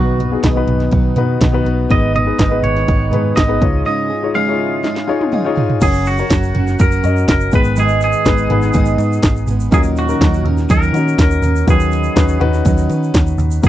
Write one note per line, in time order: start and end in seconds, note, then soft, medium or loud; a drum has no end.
0.00 0.35 B1 medium
0.00 0.19 B2 medium
0.00 0.19 D#3 medium
0.00 0.19 F#3 medium
0.00 0.20 B3 medium
0.00 0.31 B3 medium
0.00 0.19 D#4 medium
0.00 0.31 D#4 medium
0.00 0.32 F#4 medium
0.00 0.40 F#4 medium
0.00 0.32 G#4 medium
0.00 1.92 A#4 medium
0.00 0.17 B4 medium
0.00 0.57 B4 medium
0.18 0.43 F#3 soft
0.18 0.43 B3 soft
0.18 0.44 D#4 soft
0.18 0.43 B4 medium
0.18 closed hi-hat medium
0.18 floor tom medium
0.31 0.50 B3 medium
0.31 0.50 D#4 medium
0.31 0.51 F#4 medium
0.31 0.51 G#4 medium
0.43 0.64 B1 loud
0.43 0.92 B2 medium
0.43 1.41 D#3 medium
0.43 0.90 F#3 medium
0.43 0.92 B3 medium
0.43 0.93 D#4 medium
0.43 0.94 B4 medium
0.43 kick medium
0.43 snare loud
0.43 closed hi-hat medium
0.56 1.03 B3 medium
0.56 1.03 D#4 medium
0.56 1.03 F#4 medium
0.56 1.04 B4 medium
0.67 0.88 B1 medium
0.67 closed hi-hat medium
0.67 floor tom medium
0.80 snare soft
0.80 closed hi-hat soft
0.91 1.12 B1 medium
0.91 1.16 F#3 medium
0.91 1.17 B3 medium
0.91 1.16 D#4 medium
0.91 1.15 B4 medium
0.91 kick medium
0.91 closed hi-hat medium
1.16 1.37 B2 medium
1.16 1.41 F#3 soft
1.16 1.45 B3 medium
1.16 1.41 B3 soft
1.16 1.45 D#4 medium
1.16 1.41 D#4 medium
1.16 1.45 F#4 medium
1.16 1.41 B4 medium
1.16 1.46 B4 medium
1.16 closed hi-hat medium
1.16 floor tom medium
1.41 1.61 B1 medium
1.41 1.66 B2 medium
1.41 1.66 D#3 medium
1.41 1.66 F#3 medium
1.41 1.66 B3 medium
1.41 1.65 D#4 medium
1.41 1.64 B4 medium
1.41 kick medium
1.41 snare loud
1.41 closed hi-hat medium
1.53 1.81 B3 medium
1.53 1.82 D#4 medium
1.53 1.82 F#4 medium
1.53 1.82 B4 medium
1.65 1.85 B1 medium
1.65 1.91 F#3 soft
1.65 1.90 B3 soft
1.65 1.91 D#4 medium
1.65 1.90 B4 medium
1.65 closed hi-hat medium
1.89 2.30 G#1 medium
1.89 2.15 G#2 medium
1.89 2.15 D#3 medium
1.89 2.15 G#3 medium
1.89 2.18 B3 medium
1.89 2.14 B3 medium
1.89 2.18 D#4 medium
1.89 2.13 D#4 loud
1.89 2.19 G#4 medium
1.89 2.19 B4 medium
1.89 2.12 B4 medium
1.89 2.14 D#5 medium
1.89 kick medium
1.89 closed hi-hat medium
2.13 2.39 G#3 soft
2.13 2.39 B3 medium
2.13 2.39 D#4 soft
2.13 2.39 B4 medium
2.13 2.61 D#5 loud
2.13 closed hi-hat medium
2.13 floor tom medium
2.26 2.45 B3 medium
2.26 2.45 D#4 medium
2.26 2.46 G#4 medium
2.26 2.46 B4 medium
2.39 2.59 G#1 medium
2.39 2.88 G#2 medium
2.39 3.36 D#3 medium
2.39 2.86 G#3 medium
2.39 2.87 B3 medium
2.39 2.88 D#4 loud
2.39 2.89 B4 medium
2.39 kick medium
2.39 snare loud
2.39 closed hi-hat medium
2.50 2.98 B3 medium
2.50 2.98 D#4 medium
2.50 2.98 G#4 medium
2.50 2.98 B4 medium
2.63 2.83 G#1 medium
2.63 3.36 C#5 medium
2.63 closed hi-hat medium
2.63 floor tom medium
2.76 snare soft
2.76 closed hi-hat soft
2.86 3.08 G#1 loud
2.86 3.12 G#3 medium
2.86 3.12 B3 medium
2.86 3.11 D#4 medium
2.86 3.10 B4 medium
2.86 kick medium
2.86 closed hi-hat medium
3.11 3.32 G#2 medium
3.11 3.35 G#3 soft
3.11 3.40 B3 medium
3.11 3.36 B3 soft
3.11 3.36 D#4 medium
3.11 3.41 D#4 medium
3.11 3.41 G#4 medium
3.11 3.36 B4 medium
3.11 3.41 B4 medium
3.11 closed hi-hat medium
3.11 floor tom medium
3.35 3.57 G#1 medium
3.35 3.61 G#2 medium
3.35 3.61 D#3 medium
3.35 3.61 G#3 medium
3.35 3.62 B3 medium
3.35 3.62 D#4 medium
3.35 3.60 B4 medium
3.35 3.85 D#5 medium
3.35 kick medium
3.35 snare loud
3.35 closed hi-hat medium
3.48 3.61 B3 medium
3.48 3.59 D#4 medium
3.48 3.60 G#4 medium
3.48 3.61 B4 medium
3.61 3.81 C#2 medium
3.61 4.31 G#2 medium
3.61 4.10 D#4 medium
3.61 3.86 D#4 medium
3.61 4.10 F4 medium
3.61 3.86 F4 soft
3.61 3.86 G#4 medium
3.61 4.10 G#4 medium
3.61 4.11 C#5 medium
3.61 kick loud
3.61 closed hi-hat medium
3.85 4.10 C#3 medium
3.85 4.11 G#3 medium
3.85 4.11 D#4 medium
3.85 4.10 F4 medium
3.85 4.08 G#4 medium
3.85 4.31 D#5 medium
4.09 4.34 D#4 soft
4.09 4.35 F4 medium
4.09 4.34 G#4 medium
4.23 4.41 D#4 medium
4.23 4.42 F4 medium
4.23 4.42 G#4 medium
4.23 4.42 C#5 medium
4.34 4.83 C#3 medium
4.34 4.82 G#3 loud
4.34 4.83 D#4 medium
4.34 4.84 F4 loud
4.34 4.84 G#4 medium
4.34 5.53 F5 loud
4.47 4.94 D#4 medium
4.47 4.53 E4 medium
4.47 4.95 G#4 medium
4.47 4.95 C#5 medium
4.53 4.97 F4 medium
4.83 5.08 G#3 medium
4.83 5.08 D#4 medium
4.83 5.08 F4 medium
4.83 5.06 G#4 medium
4.83 snare medium
4.96 snare medium
5.07 5.36 D#4 medium
5.07 5.32 D#4 soft
5.07 5.36 F4 medium
5.07 5.32 F4 medium
5.07 5.32 G#4 soft
5.07 5.36 G#4 medium
5.07 5.37 C#5 medium
5.07 5.31 G#5 medium
5.21 high tom medium
5.32 5.57 C#3 medium
5.32 5.57 G#3 medium
5.32 5.57 D#4 medium
5.32 5.56 F4 medium
5.32 5.54 G#4 medium
5.32 5.78 F5 medium
5.32 mid tom medium
5.45 5.73 D#4 medium
5.45 5.73 F4 medium
5.45 5.73 G#4 medium
5.45 5.74 C#5 medium
5.55 5.80 D#4 soft
5.55 5.81 F4 medium
5.55 5.81 G#4 medium
5.55 floor tom medium
5.70 floor tom medium
5.80 6.21 F#1 loud
5.80 6.51 C#3 medium
5.80 6.28 F#3 medium
5.80 6.29 C#4 medium
5.80 6.09 C#4 medium
5.80 6.10 F#4 medium
5.80 6.30 F#4 loud
5.80 6.07 G#4 medium
5.80 6.10 A#4 medium
5.80 6.31 A#4 medium
5.80 6.10 C#5 medium
5.80 kick medium
5.80 closed hi-hat medium
5.80 crash medium
5.80 shaker medium
5.93 shaker medium
6.06 6.82 F#4 medium
6.06 closed hi-hat medium
6.06 shaker soft
6.18 6.84 C#4 medium
6.18 6.84 F#4 medium
6.18 6.84 A#4 medium
6.18 6.85 C#5 medium
6.18 shaker soft
6.29 6.50 F#1 medium
6.29 6.54 F#3 medium
6.29 6.55 C#4 medium
6.29 6.55 F#4 medium
6.29 6.53 A#4 medium
6.29 kick medium
6.29 snare loud
6.29 closed hi-hat medium
6.29 shaker medium
6.43 shaker soft
6.54 6.75 F#1 medium
6.54 6.78 C#4 soft
6.54 6.79 F#4 medium
6.54 6.79 A#4 medium
6.54 closed hi-hat medium
6.54 floor tom medium
6.68 snare soft
6.68 shaker medium
6.79 7.00 F#1 loud
6.79 7.03 F#3 medium
6.79 7.04 C#4 loud
6.79 7.04 F#4 loud
6.79 7.02 A#4 medium
6.79 7.26 A#4 medium
6.79 kick loud
6.79 closed hi-hat medium
6.79 shaker medium
6.92 shaker medium
7.03 7.24 F#2 medium
7.03 7.52 C#4 medium
7.03 7.54 C#4 soft
7.03 7.53 F#4 medium
7.03 7.53 F#4 soft
7.03 7.51 A#4 soft
7.03 7.53 A#4 medium
7.03 7.53 D#5 medium
7.03 closed hi-hat medium
7.03 shaker soft
7.17 shaker soft
7.28 7.48 F#1 medium
7.28 7.54 A#4 loud
7.28 kick medium
7.28 snare loud
7.28 closed hi-hat medium
7.28 shaker medium
7.40 shaker soft
7.51 8.13 G#1 medium
7.51 8.22 G#2 medium
7.51 8.22 D#3 medium
7.51 7.76 G#3 soft
7.51 8.11 B3 medium
7.51 7.77 B3 soft
7.51 7.77 D#4 medium
7.51 8.11 D#4 medium
7.51 7.76 G#4 medium
7.51 8.12 G#4 medium
7.51 8.12 B4 medium
7.51 7.79 B4 loud
7.51 kick loud
7.51 closed hi-hat medium
7.51 floor tom medium
7.51 shaker soft
7.64 shaker medium
7.76 8.26 G#2 medium
7.76 8.74 D#3 medium
7.76 8.24 G#3 medium
7.76 8.25 B3 medium
7.76 8.27 D#4 medium
7.76 8.27 G#4 loud
7.76 8.03 G#4 medium
7.76 closed hi-hat medium
7.76 shaker medium
7.89 shaker soft
8.01 9.45 G#4 medium
8.01 closed hi-hat medium
8.01 shaker soft
8.12 shaker soft
8.25 8.46 G#1 loud
8.25 8.50 G#3 medium
8.25 8.44 B3 medium
8.25 8.51 B3 medium
8.25 8.44 D#4 medium
8.25 8.49 D#4 medium
8.25 8.45 G#4 medium
8.25 8.45 B4 medium
8.25 kick medium
8.25 snare loud
8.25 closed hi-hat medium
8.25 shaker medium
8.38 shaker soft
8.49 8.70 G#1 medium
8.49 8.74 G#3 medium
8.49 9.25 B3 medium
8.49 8.74 B3 medium
8.49 9.25 D#4 medium
8.49 8.75 D#4 medium
8.49 8.74 G#4 medium
8.49 9.25 G#4 medium
8.49 9.26 B4 medium
8.49 closed hi-hat medium
8.49 floor tom medium
8.62 snare soft
8.62 shaker medium
8.73 8.95 G#1 loud
8.73 8.99 G#2 loud
8.73 8.99 D#3 loud
8.73 8.99 G#3 loud
8.73 8.99 B3 loud
8.73 8.98 D#4 loud
8.73 8.97 G#4 loud
8.73 kick loud
8.73 closed hi-hat medium
8.73 shaker medium
8.86 shaker medium
8.98 9.18 G#2 loud
8.98 9.49 G#3 soft
8.98 9.49 B3 soft
8.98 9.48 D#4 medium
8.98 9.46 G#4 medium
8.98 closed hi-hat medium
8.98 shaker medium
9.13 shaker soft
9.23 9.43 G#1 medium
9.23 kick loud
9.23 snare loud
9.23 closed hi-hat medium
9.23 shaker medium
9.36 shaker soft
9.47 9.68 G#1 medium
9.47 9.71 G#3 soft
9.47 9.72 B3 soft
9.47 9.72 D#4 soft
9.47 9.72 G#4 medium
9.47 closed hi-hat medium
9.47 floor tom medium
9.47 shaker medium
9.60 shaker medium
9.71 10.12 D#2 loud
9.71 10.41 A#2 medium
9.71 10.25 D#3 medium
9.71 10.20 F#3 medium
9.71 10.00 C#4 medium
9.71 10.21 C#4 loud
9.71 10.00 D#4 medium
9.71 10.22 D#4 medium
9.71 10.01 F#4 medium
9.71 9.80 G#4 loud
9.71 10.22 A#4 medium
9.71 10.01 A#4 medium
9.71 kick loud
9.71 closed hi-hat medium
9.71 shaker medium
9.84 shaker medium
9.97 10.43 F#4 loud
9.97 closed hi-hat medium
9.97 shaker soft
10.07 10.74 C#4 medium
10.07 10.74 D#4 medium
10.07 10.75 F#4 medium
10.07 10.75 A#4 medium
10.07 shaker medium
10.20 10.41 D#2 loud
10.20 10.45 F#3 medium
10.20 10.46 C#4 medium
10.20 10.46 D#4 medium
10.20 10.44 A#4 medium
10.20 kick medium
10.20 snare loud
10.20 closed hi-hat medium
10.20 shaker medium
10.34 shaker soft
10.44 10.65 D#2 loud
10.44 10.69 D#4 medium
10.44 10.70 A#4 medium
10.44 closed hi-hat medium
10.44 floor tom medium
10.48 10.69 C#4 medium
10.58 snare soft
10.58 shaker soft
10.69 10.90 D#2 loud
10.69 10.94 D#3 medium
10.69 10.94 F#3 medium
10.69 10.95 C#4 loud
10.69 10.94 D#4 loud
10.69 11.19 A#4 loud
10.69 10.92 A#4 loud
10.69 kick loud
10.69 closed hi-hat medium
10.69 shaker medium
10.83 shaker medium
10.93 11.13 D#3 medium
10.93 11.50 C#4 medium
10.93 11.51 D#4 medium
10.93 11.44 D#4 soft
10.93 11.51 F#4 medium
10.93 11.41 A#4 medium
10.93 11.51 A#4 medium
10.93 closed hi-hat medium
10.93 shaker soft
10.97 11.45 C#4 medium
11.08 shaker soft
11.18 11.39 D#2 medium
11.18 11.65 A#4 medium
11.18 kick loud
11.18 snare loud
11.18 closed hi-hat medium
11.18 shaker medium
11.31 shaker soft
11.42 11.63 D#2 medium
11.42 11.67 C#4 soft
11.42 11.68 D#4 medium
11.42 11.67 A#4 medium
11.42 closed hi-hat medium
11.42 floor tom medium
11.42 shaker medium
11.56 shaker medium
11.66 12.08 D#2 loud
11.66 12.37 D#3 medium
11.66 12.17 D#3 medium
11.66 12.16 F#3 medium
11.66 12.05 C#4 medium
11.66 12.17 C#4 loud
11.66 12.05 D#4 medium
11.66 12.17 D#4 medium
11.66 12.05 F#4 medium
11.66 12.05 B4 medium
11.66 12.18 B4 medium
11.66 kick loud
11.66 closed hi-hat medium
11.66 shaker medium
11.70 12.38 G#4 medium
11.80 shaker medium
11.92 closed hi-hat medium
11.92 shaker soft
12.04 shaker soft
12.15 12.36 D#2 loud
12.15 12.41 F#3 medium
12.15 12.35 C#4 medium
12.15 12.42 C#4 medium
12.15 12.35 D#4 medium
12.15 12.41 D#4 medium
12.15 12.35 F#4 medium
12.15 12.35 B4 medium
12.15 kick medium
12.15 snare loud
12.15 closed hi-hat medium
12.15 shaker medium
12.19 12.39 B4 medium
12.28 shaker soft
12.39 12.61 D#2 medium
12.39 13.15 C#4 medium
12.39 12.65 C#4 medium
12.39 13.16 D#4 medium
12.39 12.66 D#4 medium
12.39 13.16 F#4 medium
12.39 12.65 B4 medium
12.39 13.16 B4 loud
12.39 closed hi-hat medium
12.39 floor tom medium
12.53 snare soft
12.53 shaker medium
12.65 12.86 D#2 loud
12.65 12.90 D#3 medium
12.65 12.90 F#3 medium
12.65 12.90 C#4 medium
12.65 12.90 D#4 medium
12.65 12.88 B4 loud
12.65 kick medium
12.65 closed hi-hat medium
12.65 shaker medium
12.78 shaker medium
12.90 13.10 D#3 medium
12.90 13.63 C#4 soft
12.90 13.64 D#4 soft
12.90 13.63 B4 medium
12.90 closed hi-hat medium
12.90 shaker soft
13.03 shaker soft
13.14 13.34 D#2 medium
13.14 kick loud
13.14 snare loud
13.14 closed hi-hat loud
13.14 shaker medium
13.27 shaker soft
13.38 13.58 D#2 medium
13.38 closed hi-hat medium
13.38 floor tom medium
13.38 shaker soft
13.51 shaker medium
13.62 13.69 F#1 loud
13.62 13.69 C#3 medium
13.62 13.69 F#3 medium
13.62 13.69 A#3 medium
13.62 13.69 C#4 medium
13.62 13.69 F#4 medium
13.62 13.69 A#4 medium
13.62 13.69 A#4 loud
13.62 kick loud
13.62 closed hi-hat medium
13.62 shaker medium